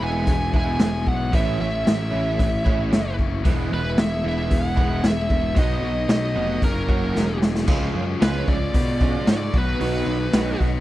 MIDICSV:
0, 0, Header, 1, 6, 480
1, 0, Start_track
1, 0, Tempo, 530504
1, 1203, Time_signature, 4, 2, 24, 8
1, 9774, End_track
2, 0, Start_track
2, 0, Title_t, "Lead electric guitar"
2, 0, Program_c, 0, 29
2, 32, Note_on_c, 0, 80, 86
2, 466, Note_off_c, 0, 80, 0
2, 509, Note_on_c, 0, 80, 87
2, 977, Note_off_c, 0, 80, 0
2, 980, Note_on_c, 0, 78, 74
2, 1196, Note_off_c, 0, 78, 0
2, 1220, Note_on_c, 0, 76, 82
2, 1448, Note_off_c, 0, 76, 0
2, 1459, Note_on_c, 0, 76, 75
2, 2852, Note_off_c, 0, 76, 0
2, 3383, Note_on_c, 0, 71, 77
2, 3616, Note_on_c, 0, 76, 88
2, 3617, Note_off_c, 0, 71, 0
2, 3831, Note_off_c, 0, 76, 0
2, 3877, Note_on_c, 0, 76, 99
2, 4098, Note_on_c, 0, 78, 100
2, 4103, Note_off_c, 0, 76, 0
2, 4581, Note_off_c, 0, 78, 0
2, 4588, Note_on_c, 0, 76, 89
2, 5019, Note_off_c, 0, 76, 0
2, 5059, Note_on_c, 0, 75, 88
2, 5494, Note_off_c, 0, 75, 0
2, 5528, Note_on_c, 0, 75, 82
2, 5968, Note_off_c, 0, 75, 0
2, 6011, Note_on_c, 0, 70, 68
2, 6686, Note_off_c, 0, 70, 0
2, 7444, Note_on_c, 0, 71, 83
2, 7672, Note_off_c, 0, 71, 0
2, 7676, Note_on_c, 0, 74, 79
2, 8375, Note_off_c, 0, 74, 0
2, 8405, Note_on_c, 0, 74, 73
2, 8634, Note_off_c, 0, 74, 0
2, 8667, Note_on_c, 0, 71, 81
2, 9587, Note_off_c, 0, 71, 0
2, 9774, End_track
3, 0, Start_track
3, 0, Title_t, "Overdriven electric guitar"
3, 0, Program_c, 1, 29
3, 0, Note_on_c, 1, 52, 78
3, 4, Note_on_c, 1, 64, 64
3, 18, Note_on_c, 1, 59, 59
3, 30, Note_on_c, 1, 56, 51
3, 481, Note_off_c, 1, 64, 0
3, 485, Note_on_c, 1, 64, 68
3, 494, Note_off_c, 1, 59, 0
3, 505, Note_on_c, 1, 59, 63
3, 507, Note_off_c, 1, 56, 0
3, 518, Note_on_c, 1, 56, 50
3, 707, Note_off_c, 1, 52, 0
3, 710, Note_on_c, 1, 52, 66
3, 711, Note_off_c, 1, 56, 0
3, 722, Note_on_c, 1, 56, 74
3, 725, Note_off_c, 1, 59, 0
3, 735, Note_on_c, 1, 59, 75
3, 737, Note_off_c, 1, 64, 0
3, 740, Note_on_c, 1, 64, 78
3, 1188, Note_off_c, 1, 56, 0
3, 1192, Note_off_c, 1, 52, 0
3, 1193, Note_on_c, 1, 45, 85
3, 1195, Note_off_c, 1, 59, 0
3, 1196, Note_on_c, 1, 52, 82
3, 1207, Note_on_c, 1, 57, 89
3, 1213, Note_on_c, 1, 61, 89
3, 1214, Note_off_c, 1, 64, 0
3, 1218, Note_on_c, 1, 64, 94
3, 1432, Note_off_c, 1, 64, 0
3, 1435, Note_on_c, 1, 64, 67
3, 1438, Note_off_c, 1, 61, 0
3, 1449, Note_on_c, 1, 61, 55
3, 1453, Note_off_c, 1, 57, 0
3, 1464, Note_on_c, 1, 57, 59
3, 1662, Note_off_c, 1, 45, 0
3, 1673, Note_on_c, 1, 45, 74
3, 1675, Note_off_c, 1, 52, 0
3, 1675, Note_off_c, 1, 57, 0
3, 1678, Note_on_c, 1, 52, 75
3, 1681, Note_off_c, 1, 61, 0
3, 1686, Note_on_c, 1, 57, 78
3, 1692, Note_on_c, 1, 61, 84
3, 1695, Note_off_c, 1, 64, 0
3, 1699, Note_on_c, 1, 64, 85
3, 1914, Note_off_c, 1, 64, 0
3, 1918, Note_on_c, 1, 64, 69
3, 1919, Note_off_c, 1, 61, 0
3, 1930, Note_on_c, 1, 61, 55
3, 1932, Note_off_c, 1, 57, 0
3, 1943, Note_on_c, 1, 57, 55
3, 2157, Note_off_c, 1, 45, 0
3, 2378, Note_off_c, 1, 64, 0
3, 2389, Note_on_c, 1, 64, 64
3, 2394, Note_off_c, 1, 61, 0
3, 2404, Note_off_c, 1, 57, 0
3, 2405, Note_on_c, 1, 61, 57
3, 2415, Note_on_c, 1, 57, 51
3, 2633, Note_off_c, 1, 52, 0
3, 2636, Note_on_c, 1, 52, 72
3, 2637, Note_off_c, 1, 57, 0
3, 2647, Note_off_c, 1, 61, 0
3, 2648, Note_on_c, 1, 57, 83
3, 2655, Note_off_c, 1, 64, 0
3, 2658, Note_on_c, 1, 61, 73
3, 2666, Note_on_c, 1, 64, 86
3, 3099, Note_off_c, 1, 52, 0
3, 3109, Note_off_c, 1, 57, 0
3, 3110, Note_on_c, 1, 52, 83
3, 3114, Note_off_c, 1, 61, 0
3, 3118, Note_off_c, 1, 64, 0
3, 3119, Note_on_c, 1, 56, 97
3, 3129, Note_on_c, 1, 59, 94
3, 3135, Note_on_c, 1, 64, 90
3, 3344, Note_off_c, 1, 64, 0
3, 3355, Note_on_c, 1, 64, 73
3, 3362, Note_off_c, 1, 59, 0
3, 3370, Note_off_c, 1, 56, 0
3, 3373, Note_on_c, 1, 59, 61
3, 3381, Note_on_c, 1, 56, 60
3, 3582, Note_off_c, 1, 52, 0
3, 3590, Note_off_c, 1, 56, 0
3, 3593, Note_on_c, 1, 52, 89
3, 3597, Note_off_c, 1, 59, 0
3, 3601, Note_on_c, 1, 56, 77
3, 3608, Note_on_c, 1, 59, 85
3, 3610, Note_off_c, 1, 64, 0
3, 3621, Note_on_c, 1, 64, 91
3, 3828, Note_off_c, 1, 64, 0
3, 3839, Note_on_c, 1, 64, 66
3, 3842, Note_off_c, 1, 59, 0
3, 3853, Note_on_c, 1, 59, 63
3, 3854, Note_off_c, 1, 56, 0
3, 3864, Note_on_c, 1, 56, 52
3, 4074, Note_off_c, 1, 52, 0
3, 4293, Note_off_c, 1, 64, 0
3, 4304, Note_on_c, 1, 64, 60
3, 4310, Note_off_c, 1, 59, 0
3, 4321, Note_on_c, 1, 59, 60
3, 4328, Note_off_c, 1, 56, 0
3, 4339, Note_on_c, 1, 56, 55
3, 4560, Note_off_c, 1, 56, 0
3, 4560, Note_on_c, 1, 52, 70
3, 4568, Note_off_c, 1, 59, 0
3, 4571, Note_on_c, 1, 56, 75
3, 4574, Note_off_c, 1, 64, 0
3, 4579, Note_on_c, 1, 59, 85
3, 4585, Note_on_c, 1, 64, 77
3, 5016, Note_off_c, 1, 52, 0
3, 5020, Note_on_c, 1, 47, 83
3, 5028, Note_off_c, 1, 56, 0
3, 5032, Note_off_c, 1, 59, 0
3, 5035, Note_off_c, 1, 64, 0
3, 5037, Note_on_c, 1, 54, 88
3, 5044, Note_on_c, 1, 59, 82
3, 5052, Note_on_c, 1, 63, 99
3, 5248, Note_off_c, 1, 63, 0
3, 5258, Note_on_c, 1, 63, 61
3, 5267, Note_off_c, 1, 59, 0
3, 5275, Note_off_c, 1, 54, 0
3, 5278, Note_on_c, 1, 59, 58
3, 5286, Note_on_c, 1, 54, 53
3, 5485, Note_off_c, 1, 47, 0
3, 5495, Note_off_c, 1, 54, 0
3, 5495, Note_on_c, 1, 47, 79
3, 5506, Note_on_c, 1, 54, 70
3, 5507, Note_off_c, 1, 59, 0
3, 5510, Note_off_c, 1, 63, 0
3, 5518, Note_on_c, 1, 59, 87
3, 5521, Note_on_c, 1, 63, 99
3, 5730, Note_off_c, 1, 63, 0
3, 5740, Note_on_c, 1, 63, 61
3, 5746, Note_off_c, 1, 59, 0
3, 5757, Note_on_c, 1, 59, 60
3, 5759, Note_off_c, 1, 54, 0
3, 5769, Note_on_c, 1, 54, 59
3, 5970, Note_off_c, 1, 47, 0
3, 5973, Note_off_c, 1, 63, 0
3, 5981, Note_off_c, 1, 59, 0
3, 5985, Note_on_c, 1, 42, 84
3, 5987, Note_off_c, 1, 54, 0
3, 5993, Note_on_c, 1, 49, 94
3, 5997, Note_on_c, 1, 54, 87
3, 6001, Note_on_c, 1, 58, 97
3, 6010, Note_on_c, 1, 61, 92
3, 6211, Note_off_c, 1, 61, 0
3, 6222, Note_on_c, 1, 61, 68
3, 6227, Note_off_c, 1, 58, 0
3, 6238, Note_on_c, 1, 58, 55
3, 6240, Note_off_c, 1, 54, 0
3, 6251, Note_on_c, 1, 54, 54
3, 6443, Note_off_c, 1, 49, 0
3, 6454, Note_on_c, 1, 49, 62
3, 6458, Note_off_c, 1, 54, 0
3, 6466, Note_off_c, 1, 58, 0
3, 6469, Note_off_c, 1, 42, 0
3, 6469, Note_on_c, 1, 54, 67
3, 6470, Note_off_c, 1, 61, 0
3, 6476, Note_on_c, 1, 58, 68
3, 6481, Note_on_c, 1, 61, 81
3, 6917, Note_off_c, 1, 49, 0
3, 6928, Note_on_c, 1, 49, 92
3, 6934, Note_off_c, 1, 54, 0
3, 6937, Note_off_c, 1, 61, 0
3, 6937, Note_on_c, 1, 56, 98
3, 6941, Note_off_c, 1, 58, 0
3, 6948, Note_on_c, 1, 61, 94
3, 6958, Note_on_c, 1, 65, 96
3, 7405, Note_off_c, 1, 49, 0
3, 7416, Note_on_c, 1, 49, 68
3, 7421, Note_off_c, 1, 56, 0
3, 7432, Note_on_c, 1, 56, 69
3, 7436, Note_off_c, 1, 61, 0
3, 7440, Note_off_c, 1, 65, 0
3, 7440, Note_on_c, 1, 61, 73
3, 7451, Note_on_c, 1, 65, 73
3, 7650, Note_off_c, 1, 65, 0
3, 7661, Note_on_c, 1, 65, 74
3, 7671, Note_off_c, 1, 61, 0
3, 7675, Note_on_c, 1, 61, 60
3, 7678, Note_off_c, 1, 56, 0
3, 7688, Note_on_c, 1, 56, 55
3, 7890, Note_off_c, 1, 49, 0
3, 7899, Note_off_c, 1, 56, 0
3, 7901, Note_on_c, 1, 49, 72
3, 7910, Note_on_c, 1, 56, 78
3, 7914, Note_off_c, 1, 61, 0
3, 7916, Note_off_c, 1, 65, 0
3, 7918, Note_on_c, 1, 61, 82
3, 7926, Note_on_c, 1, 65, 84
3, 8373, Note_off_c, 1, 49, 0
3, 8382, Note_off_c, 1, 56, 0
3, 8384, Note_on_c, 1, 49, 97
3, 8393, Note_on_c, 1, 56, 92
3, 8400, Note_off_c, 1, 61, 0
3, 8403, Note_off_c, 1, 65, 0
3, 8404, Note_on_c, 1, 61, 91
3, 8414, Note_on_c, 1, 65, 96
3, 8616, Note_off_c, 1, 49, 0
3, 8621, Note_off_c, 1, 56, 0
3, 8627, Note_off_c, 1, 65, 0
3, 8631, Note_on_c, 1, 66, 88
3, 8638, Note_off_c, 1, 61, 0
3, 8642, Note_on_c, 1, 59, 81
3, 8645, Note_on_c, 1, 54, 68
3, 8655, Note_on_c, 1, 51, 83
3, 8661, Note_on_c, 1, 47, 67
3, 8851, Note_off_c, 1, 47, 0
3, 8862, Note_on_c, 1, 47, 83
3, 8865, Note_off_c, 1, 51, 0
3, 8875, Note_off_c, 1, 54, 0
3, 8876, Note_on_c, 1, 51, 99
3, 8885, Note_off_c, 1, 59, 0
3, 8886, Note_off_c, 1, 66, 0
3, 8886, Note_on_c, 1, 54, 95
3, 8889, Note_on_c, 1, 59, 95
3, 8896, Note_on_c, 1, 66, 93
3, 9338, Note_off_c, 1, 51, 0
3, 9349, Note_on_c, 1, 51, 71
3, 9352, Note_off_c, 1, 54, 0
3, 9363, Note_on_c, 1, 54, 62
3, 9366, Note_off_c, 1, 66, 0
3, 9367, Note_off_c, 1, 59, 0
3, 9371, Note_on_c, 1, 59, 72
3, 9377, Note_on_c, 1, 66, 82
3, 9571, Note_off_c, 1, 66, 0
3, 9581, Note_on_c, 1, 66, 68
3, 9593, Note_off_c, 1, 47, 0
3, 9602, Note_off_c, 1, 59, 0
3, 9604, Note_off_c, 1, 54, 0
3, 9606, Note_on_c, 1, 59, 62
3, 9615, Note_on_c, 1, 54, 59
3, 9774, Note_off_c, 1, 51, 0
3, 9774, Note_off_c, 1, 54, 0
3, 9774, Note_off_c, 1, 59, 0
3, 9774, Note_off_c, 1, 66, 0
3, 9774, End_track
4, 0, Start_track
4, 0, Title_t, "Overdriven electric guitar"
4, 0, Program_c, 2, 29
4, 14, Note_on_c, 2, 52, 72
4, 321, Note_off_c, 2, 52, 0
4, 489, Note_on_c, 2, 52, 65
4, 798, Note_off_c, 2, 52, 0
4, 1920, Note_on_c, 2, 52, 68
4, 2233, Note_off_c, 2, 52, 0
4, 2404, Note_on_c, 2, 52, 65
4, 2714, Note_off_c, 2, 52, 0
4, 3843, Note_on_c, 2, 52, 69
4, 4152, Note_off_c, 2, 52, 0
4, 4321, Note_on_c, 2, 52, 67
4, 4630, Note_off_c, 2, 52, 0
4, 5035, Note_on_c, 2, 66, 86
4, 5346, Note_off_c, 2, 66, 0
4, 5746, Note_on_c, 2, 66, 86
4, 5990, Note_off_c, 2, 66, 0
4, 6230, Note_on_c, 2, 66, 89
4, 6544, Note_off_c, 2, 66, 0
4, 6945, Note_on_c, 2, 53, 76
4, 7261, Note_off_c, 2, 53, 0
4, 7423, Note_on_c, 2, 53, 73
4, 7741, Note_off_c, 2, 53, 0
4, 8156, Note_on_c, 2, 65, 86
4, 8159, Note_on_c, 2, 61, 78
4, 8162, Note_on_c, 2, 56, 67
4, 8164, Note_on_c, 2, 53, 68
4, 8468, Note_off_c, 2, 65, 0
4, 8470, Note_off_c, 2, 61, 0
4, 8471, Note_off_c, 2, 56, 0
4, 8472, Note_off_c, 2, 53, 0
4, 8874, Note_on_c, 2, 63, 84
4, 9189, Note_off_c, 2, 63, 0
4, 9357, Note_on_c, 2, 63, 86
4, 9671, Note_off_c, 2, 63, 0
4, 9774, End_track
5, 0, Start_track
5, 0, Title_t, "Picked electric bass"
5, 0, Program_c, 3, 34
5, 9, Note_on_c, 3, 28, 77
5, 233, Note_off_c, 3, 28, 0
5, 238, Note_on_c, 3, 28, 82
5, 698, Note_off_c, 3, 28, 0
5, 732, Note_on_c, 3, 28, 87
5, 957, Note_off_c, 3, 28, 0
5, 969, Note_on_c, 3, 35, 80
5, 1195, Note_off_c, 3, 35, 0
5, 1204, Note_on_c, 3, 33, 83
5, 1432, Note_off_c, 3, 33, 0
5, 1452, Note_on_c, 3, 33, 79
5, 1676, Note_off_c, 3, 33, 0
5, 1688, Note_on_c, 3, 33, 76
5, 1914, Note_off_c, 3, 33, 0
5, 1934, Note_on_c, 3, 33, 79
5, 2157, Note_off_c, 3, 33, 0
5, 2164, Note_on_c, 3, 33, 90
5, 2619, Note_off_c, 3, 33, 0
5, 2659, Note_on_c, 3, 30, 81
5, 3107, Note_off_c, 3, 30, 0
5, 3127, Note_on_c, 3, 28, 83
5, 3351, Note_off_c, 3, 28, 0
5, 3363, Note_on_c, 3, 28, 87
5, 3589, Note_off_c, 3, 28, 0
5, 3600, Note_on_c, 3, 28, 69
5, 3827, Note_off_c, 3, 28, 0
5, 3841, Note_on_c, 3, 28, 88
5, 4067, Note_off_c, 3, 28, 0
5, 4083, Note_on_c, 3, 28, 84
5, 4536, Note_off_c, 3, 28, 0
5, 4555, Note_on_c, 3, 28, 90
5, 4784, Note_off_c, 3, 28, 0
5, 4794, Note_on_c, 3, 28, 83
5, 5023, Note_off_c, 3, 28, 0
5, 5030, Note_on_c, 3, 35, 89
5, 5256, Note_off_c, 3, 35, 0
5, 5262, Note_on_c, 3, 35, 77
5, 5496, Note_off_c, 3, 35, 0
5, 5504, Note_on_c, 3, 35, 73
5, 5737, Note_off_c, 3, 35, 0
5, 5752, Note_on_c, 3, 29, 85
5, 5981, Note_off_c, 3, 29, 0
5, 5988, Note_on_c, 3, 30, 82
5, 6448, Note_off_c, 3, 30, 0
5, 6475, Note_on_c, 3, 28, 79
5, 6932, Note_off_c, 3, 28, 0
5, 6947, Note_on_c, 3, 37, 95
5, 7129, Note_off_c, 3, 37, 0
5, 7189, Note_on_c, 3, 42, 77
5, 7371, Note_off_c, 3, 42, 0
5, 7432, Note_on_c, 3, 37, 78
5, 7613, Note_off_c, 3, 37, 0
5, 7669, Note_on_c, 3, 37, 89
5, 7851, Note_off_c, 3, 37, 0
5, 7907, Note_on_c, 3, 47, 86
5, 8270, Note_off_c, 3, 47, 0
5, 8400, Note_on_c, 3, 44, 83
5, 8578, Note_off_c, 3, 44, 0
5, 8628, Note_on_c, 3, 35, 90
5, 8812, Note_off_c, 3, 35, 0
5, 8878, Note_on_c, 3, 35, 89
5, 9058, Note_off_c, 3, 35, 0
5, 9104, Note_on_c, 3, 35, 81
5, 9290, Note_off_c, 3, 35, 0
5, 9352, Note_on_c, 3, 35, 79
5, 9535, Note_off_c, 3, 35, 0
5, 9594, Note_on_c, 3, 35, 78
5, 9774, Note_off_c, 3, 35, 0
5, 9774, End_track
6, 0, Start_track
6, 0, Title_t, "Drums"
6, 241, Note_on_c, 9, 46, 47
6, 245, Note_on_c, 9, 36, 83
6, 332, Note_off_c, 9, 46, 0
6, 335, Note_off_c, 9, 36, 0
6, 485, Note_on_c, 9, 36, 77
6, 576, Note_off_c, 9, 36, 0
6, 718, Note_on_c, 9, 46, 42
6, 720, Note_on_c, 9, 38, 97
6, 808, Note_off_c, 9, 46, 0
6, 811, Note_off_c, 9, 38, 0
6, 966, Note_on_c, 9, 36, 75
6, 1056, Note_off_c, 9, 36, 0
6, 1204, Note_on_c, 9, 46, 46
6, 1205, Note_on_c, 9, 36, 89
6, 1294, Note_off_c, 9, 46, 0
6, 1296, Note_off_c, 9, 36, 0
6, 1691, Note_on_c, 9, 46, 52
6, 1694, Note_on_c, 9, 38, 98
6, 1781, Note_off_c, 9, 46, 0
6, 1784, Note_off_c, 9, 38, 0
6, 2166, Note_on_c, 9, 36, 77
6, 2169, Note_on_c, 9, 46, 45
6, 2256, Note_off_c, 9, 36, 0
6, 2260, Note_off_c, 9, 46, 0
6, 2406, Note_on_c, 9, 36, 85
6, 2497, Note_off_c, 9, 36, 0
6, 2646, Note_on_c, 9, 46, 39
6, 2649, Note_on_c, 9, 38, 91
6, 2736, Note_off_c, 9, 46, 0
6, 2739, Note_off_c, 9, 38, 0
6, 2884, Note_on_c, 9, 36, 69
6, 2975, Note_off_c, 9, 36, 0
6, 3121, Note_on_c, 9, 46, 43
6, 3123, Note_on_c, 9, 36, 102
6, 3211, Note_off_c, 9, 46, 0
6, 3214, Note_off_c, 9, 36, 0
6, 3598, Note_on_c, 9, 46, 46
6, 3600, Note_on_c, 9, 38, 108
6, 3688, Note_off_c, 9, 46, 0
6, 3691, Note_off_c, 9, 38, 0
6, 4079, Note_on_c, 9, 36, 79
6, 4080, Note_on_c, 9, 46, 46
6, 4170, Note_off_c, 9, 36, 0
6, 4171, Note_off_c, 9, 46, 0
6, 4317, Note_on_c, 9, 36, 84
6, 4408, Note_off_c, 9, 36, 0
6, 4557, Note_on_c, 9, 46, 43
6, 4559, Note_on_c, 9, 38, 96
6, 4647, Note_off_c, 9, 46, 0
6, 4650, Note_off_c, 9, 38, 0
6, 4797, Note_on_c, 9, 36, 76
6, 4887, Note_off_c, 9, 36, 0
6, 5035, Note_on_c, 9, 36, 99
6, 5036, Note_on_c, 9, 46, 44
6, 5126, Note_off_c, 9, 36, 0
6, 5127, Note_off_c, 9, 46, 0
6, 5509, Note_on_c, 9, 46, 50
6, 5512, Note_on_c, 9, 38, 104
6, 5600, Note_off_c, 9, 46, 0
6, 5603, Note_off_c, 9, 38, 0
6, 5991, Note_on_c, 9, 36, 77
6, 5996, Note_on_c, 9, 46, 44
6, 6081, Note_off_c, 9, 36, 0
6, 6086, Note_off_c, 9, 46, 0
6, 6231, Note_on_c, 9, 36, 78
6, 6321, Note_off_c, 9, 36, 0
6, 6475, Note_on_c, 9, 38, 50
6, 6565, Note_off_c, 9, 38, 0
6, 6715, Note_on_c, 9, 38, 75
6, 6805, Note_off_c, 9, 38, 0
6, 6831, Note_on_c, 9, 38, 65
6, 6922, Note_off_c, 9, 38, 0
6, 6944, Note_on_c, 9, 49, 99
6, 6947, Note_on_c, 9, 36, 95
6, 7035, Note_off_c, 9, 49, 0
6, 7038, Note_off_c, 9, 36, 0
6, 7435, Note_on_c, 9, 46, 51
6, 7438, Note_on_c, 9, 38, 113
6, 7525, Note_off_c, 9, 46, 0
6, 7528, Note_off_c, 9, 38, 0
6, 7670, Note_on_c, 9, 36, 79
6, 7760, Note_off_c, 9, 36, 0
6, 7909, Note_on_c, 9, 46, 53
6, 7910, Note_on_c, 9, 36, 98
6, 8000, Note_off_c, 9, 46, 0
6, 8001, Note_off_c, 9, 36, 0
6, 8149, Note_on_c, 9, 36, 86
6, 8240, Note_off_c, 9, 36, 0
6, 8388, Note_on_c, 9, 46, 48
6, 8390, Note_on_c, 9, 38, 94
6, 8478, Note_off_c, 9, 46, 0
6, 8481, Note_off_c, 9, 38, 0
6, 8630, Note_on_c, 9, 36, 99
6, 8720, Note_off_c, 9, 36, 0
6, 8871, Note_on_c, 9, 46, 51
6, 8962, Note_off_c, 9, 46, 0
6, 9348, Note_on_c, 9, 46, 55
6, 9351, Note_on_c, 9, 38, 109
6, 9439, Note_off_c, 9, 46, 0
6, 9441, Note_off_c, 9, 38, 0
6, 9596, Note_on_c, 9, 36, 72
6, 9686, Note_off_c, 9, 36, 0
6, 9774, End_track
0, 0, End_of_file